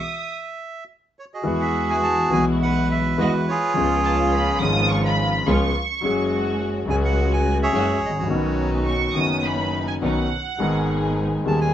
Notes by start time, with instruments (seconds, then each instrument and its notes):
Already playing: bandoneon E5
0.00 violin section D#6
1.19 bandoneon C#5
1.34 bandoneon F#4 G#4 D#5
1.44 double bass E2, grand piano E2 E3 G#3 B3 F#4, string section G#3 E4 F#4
1.61 bandoneon E5
1.90 bandoneon G#5
2.03 bandoneon A5
2.30 double bass B1, grand piano B1 B2 E3 G#3 B3, string section G#3 E4 F#4, bandoneon G#5
2.34 grand piano F#4
2.62 bandoneon B4 F#5
2.91 bandoneon E5
3.18 grand piano E2 E3 G#3 B3 F#4, double bass E2, string section G#3 E4 F#4, bandoneon D#5
3.48 bandoneon F4 G#4 C#5
3.74 double bass C#2, grand piano C#2 C#3 F3 B3 C#4, string section B3 C#4 F4
3.78 grand piano G#4
4.04 violin section A5
4.33 violin section B5
4.59 double bass G#1, grand piano G#1 G#2 F3 B3 C#4 G#4, string section B3 C#4 F4, violin section D#6
4.89 violin section C#6
5.04 violin section B5
5.46 double bass C#2, grand piano C#2 C#3 F3 B3 C#4 G#4, string section B3 C#4 F4, violin section C#6
6.03 double bass F#1, grand piano F#2 F#3 G#3 C#4 G#4, string section G#3 C#4 F#4
6.86 double bass C#2, grand piano C#2 C#3 F#3 G#3 C#4, string section G#3 C#4 F#4
6.90 grand piano G#4, bandoneon G#5
7.05 bandoneon F#5
7.33 bandoneon G#5
7.62 bandoneon G#4 C#5 E5
7.72 double bass F#1, grand piano F#2 F#3 G#3 C#4 G#4, string section G#3 C#4 F#4
8.02 double bass A1, bandoneon D#5
8.09 grand piano G#1
8.16 grand piano A1, bandoneon F#4 C#5
8.23 grand piano A#1
8.28 double bass B1, grand piano B1 B2 D#3 B3 C#4 F#4, string section B3 C#4 D#4
8.87 violin section C#6
9.14 double bass F#1, grand piano F#1 F#2 D#3 B3 C#4 F#4, string section B3 C#4 D#4, violin section D#6
9.44 violin section B5
9.87 violin section G#5
10.01 double bass B1, grand piano B1 B2 D#3 B3 C#4 F#4, string section B3 C#4 D#4, violin section F#5
10.58 double bass G#1, grand piano G#1 G#2 D#3 G#3 B3 G#4, string section B3 D#4 G#4
11.44 grand piano D#1 D#2 D#3 G#3 B3, double bass D#2, string section B3 D#4 G#4, bandoneon A5
11.48 grand piano G#4
11.61 bandoneon G#5